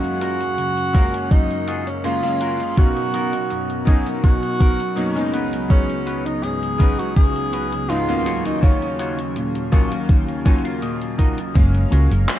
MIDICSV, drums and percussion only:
0, 0, Header, 1, 2, 480
1, 0, Start_track
1, 0, Key_signature, 6, "major"
1, 0, Tempo, 731707
1, 1820, Time_signature, 4, 2, 24, 8
1, 8128, End_track
2, 0, Start_track
2, 0, Title_t, "Drums"
2, 27, Note_on_c, 9, 42, 23
2, 92, Note_off_c, 9, 42, 0
2, 141, Note_on_c, 9, 42, 83
2, 206, Note_off_c, 9, 42, 0
2, 267, Note_on_c, 9, 42, 47
2, 332, Note_off_c, 9, 42, 0
2, 381, Note_on_c, 9, 42, 46
2, 447, Note_off_c, 9, 42, 0
2, 507, Note_on_c, 9, 42, 23
2, 573, Note_off_c, 9, 42, 0
2, 620, Note_on_c, 9, 36, 99
2, 620, Note_on_c, 9, 42, 80
2, 686, Note_off_c, 9, 36, 0
2, 686, Note_off_c, 9, 42, 0
2, 748, Note_on_c, 9, 42, 48
2, 814, Note_off_c, 9, 42, 0
2, 860, Note_on_c, 9, 36, 111
2, 861, Note_on_c, 9, 42, 49
2, 926, Note_off_c, 9, 36, 0
2, 927, Note_off_c, 9, 42, 0
2, 988, Note_on_c, 9, 42, 23
2, 1054, Note_off_c, 9, 42, 0
2, 1100, Note_on_c, 9, 42, 83
2, 1166, Note_off_c, 9, 42, 0
2, 1227, Note_on_c, 9, 42, 46
2, 1293, Note_off_c, 9, 42, 0
2, 1340, Note_on_c, 9, 42, 49
2, 1406, Note_off_c, 9, 42, 0
2, 1466, Note_on_c, 9, 42, 24
2, 1531, Note_off_c, 9, 42, 0
2, 1579, Note_on_c, 9, 42, 81
2, 1645, Note_off_c, 9, 42, 0
2, 1706, Note_on_c, 9, 42, 45
2, 1771, Note_off_c, 9, 42, 0
2, 1819, Note_on_c, 9, 42, 47
2, 1821, Note_on_c, 9, 36, 107
2, 1885, Note_off_c, 9, 42, 0
2, 1886, Note_off_c, 9, 36, 0
2, 1946, Note_on_c, 9, 42, 23
2, 2011, Note_off_c, 9, 42, 0
2, 2059, Note_on_c, 9, 42, 84
2, 2125, Note_off_c, 9, 42, 0
2, 2185, Note_on_c, 9, 42, 47
2, 2251, Note_off_c, 9, 42, 0
2, 2299, Note_on_c, 9, 42, 47
2, 2364, Note_off_c, 9, 42, 0
2, 2426, Note_on_c, 9, 42, 24
2, 2491, Note_off_c, 9, 42, 0
2, 2540, Note_on_c, 9, 36, 92
2, 2540, Note_on_c, 9, 42, 82
2, 2605, Note_off_c, 9, 42, 0
2, 2606, Note_off_c, 9, 36, 0
2, 2666, Note_on_c, 9, 42, 48
2, 2732, Note_off_c, 9, 42, 0
2, 2780, Note_on_c, 9, 36, 105
2, 2780, Note_on_c, 9, 42, 47
2, 2845, Note_off_c, 9, 42, 0
2, 2846, Note_off_c, 9, 36, 0
2, 2906, Note_on_c, 9, 42, 23
2, 2972, Note_off_c, 9, 42, 0
2, 3020, Note_on_c, 9, 36, 94
2, 3020, Note_on_c, 9, 42, 82
2, 3086, Note_off_c, 9, 36, 0
2, 3086, Note_off_c, 9, 42, 0
2, 3147, Note_on_c, 9, 42, 46
2, 3212, Note_off_c, 9, 42, 0
2, 3260, Note_on_c, 9, 42, 48
2, 3326, Note_off_c, 9, 42, 0
2, 3388, Note_on_c, 9, 42, 24
2, 3453, Note_off_c, 9, 42, 0
2, 3500, Note_on_c, 9, 42, 83
2, 3566, Note_off_c, 9, 42, 0
2, 3628, Note_on_c, 9, 42, 46
2, 3693, Note_off_c, 9, 42, 0
2, 3740, Note_on_c, 9, 36, 111
2, 3742, Note_on_c, 9, 42, 50
2, 3806, Note_off_c, 9, 36, 0
2, 3807, Note_off_c, 9, 42, 0
2, 3867, Note_on_c, 9, 42, 24
2, 3933, Note_off_c, 9, 42, 0
2, 3981, Note_on_c, 9, 42, 84
2, 4046, Note_off_c, 9, 42, 0
2, 4108, Note_on_c, 9, 42, 49
2, 4174, Note_off_c, 9, 42, 0
2, 4221, Note_on_c, 9, 42, 48
2, 4287, Note_off_c, 9, 42, 0
2, 4348, Note_on_c, 9, 42, 24
2, 4414, Note_off_c, 9, 42, 0
2, 4460, Note_on_c, 9, 36, 96
2, 4461, Note_on_c, 9, 42, 81
2, 4526, Note_off_c, 9, 36, 0
2, 4527, Note_off_c, 9, 42, 0
2, 4587, Note_on_c, 9, 42, 47
2, 4653, Note_off_c, 9, 42, 0
2, 4700, Note_on_c, 9, 36, 107
2, 4700, Note_on_c, 9, 42, 49
2, 4766, Note_off_c, 9, 36, 0
2, 4766, Note_off_c, 9, 42, 0
2, 4827, Note_on_c, 9, 42, 25
2, 4893, Note_off_c, 9, 42, 0
2, 4940, Note_on_c, 9, 42, 85
2, 5006, Note_off_c, 9, 42, 0
2, 5067, Note_on_c, 9, 42, 48
2, 5133, Note_off_c, 9, 42, 0
2, 5181, Note_on_c, 9, 42, 50
2, 5246, Note_off_c, 9, 42, 0
2, 5307, Note_on_c, 9, 42, 24
2, 5372, Note_off_c, 9, 42, 0
2, 5420, Note_on_c, 9, 42, 86
2, 5485, Note_off_c, 9, 42, 0
2, 5546, Note_on_c, 9, 42, 48
2, 5612, Note_off_c, 9, 42, 0
2, 5660, Note_on_c, 9, 36, 109
2, 5661, Note_on_c, 9, 42, 51
2, 5725, Note_off_c, 9, 36, 0
2, 5726, Note_off_c, 9, 42, 0
2, 5787, Note_on_c, 9, 42, 25
2, 5853, Note_off_c, 9, 42, 0
2, 5900, Note_on_c, 9, 42, 89
2, 5965, Note_off_c, 9, 42, 0
2, 6026, Note_on_c, 9, 42, 50
2, 6091, Note_off_c, 9, 42, 0
2, 6140, Note_on_c, 9, 42, 51
2, 6206, Note_off_c, 9, 42, 0
2, 6266, Note_on_c, 9, 42, 26
2, 6332, Note_off_c, 9, 42, 0
2, 6380, Note_on_c, 9, 36, 93
2, 6380, Note_on_c, 9, 42, 88
2, 6445, Note_off_c, 9, 42, 0
2, 6446, Note_off_c, 9, 36, 0
2, 6506, Note_on_c, 9, 42, 51
2, 6572, Note_off_c, 9, 42, 0
2, 6619, Note_on_c, 9, 42, 51
2, 6620, Note_on_c, 9, 36, 110
2, 6685, Note_off_c, 9, 42, 0
2, 6686, Note_off_c, 9, 36, 0
2, 6746, Note_on_c, 9, 42, 26
2, 6812, Note_off_c, 9, 42, 0
2, 6860, Note_on_c, 9, 42, 90
2, 6861, Note_on_c, 9, 36, 95
2, 6926, Note_off_c, 9, 36, 0
2, 6926, Note_off_c, 9, 42, 0
2, 6987, Note_on_c, 9, 42, 50
2, 7053, Note_off_c, 9, 42, 0
2, 7100, Note_on_c, 9, 42, 51
2, 7166, Note_off_c, 9, 42, 0
2, 7226, Note_on_c, 9, 42, 25
2, 7292, Note_off_c, 9, 42, 0
2, 7339, Note_on_c, 9, 42, 88
2, 7341, Note_on_c, 9, 36, 56
2, 7405, Note_off_c, 9, 42, 0
2, 7406, Note_off_c, 9, 36, 0
2, 7466, Note_on_c, 9, 42, 49
2, 7531, Note_off_c, 9, 42, 0
2, 7580, Note_on_c, 9, 42, 56
2, 7580, Note_on_c, 9, 54, 49
2, 7581, Note_on_c, 9, 36, 124
2, 7645, Note_off_c, 9, 42, 0
2, 7645, Note_off_c, 9, 54, 0
2, 7646, Note_off_c, 9, 36, 0
2, 7705, Note_on_c, 9, 42, 27
2, 7705, Note_on_c, 9, 54, 30
2, 7771, Note_off_c, 9, 42, 0
2, 7771, Note_off_c, 9, 54, 0
2, 7820, Note_on_c, 9, 42, 99
2, 7885, Note_off_c, 9, 42, 0
2, 7947, Note_on_c, 9, 42, 56
2, 7947, Note_on_c, 9, 54, 56
2, 8013, Note_off_c, 9, 42, 0
2, 8013, Note_off_c, 9, 54, 0
2, 8061, Note_on_c, 9, 39, 120
2, 8061, Note_on_c, 9, 42, 55
2, 8061, Note_on_c, 9, 54, 50
2, 8127, Note_off_c, 9, 39, 0
2, 8127, Note_off_c, 9, 42, 0
2, 8127, Note_off_c, 9, 54, 0
2, 8128, End_track
0, 0, End_of_file